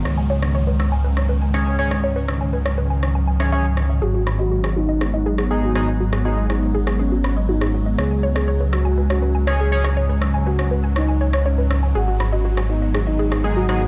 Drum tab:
SD |r--r--r--r--r--r|--r--r--r--r--r-|--r--r--r--r--r-|-r--r--r--r--r--|

SD |r--r--r--r--r--r|--r--r--r--r--r-|--r--r--r--r--r-|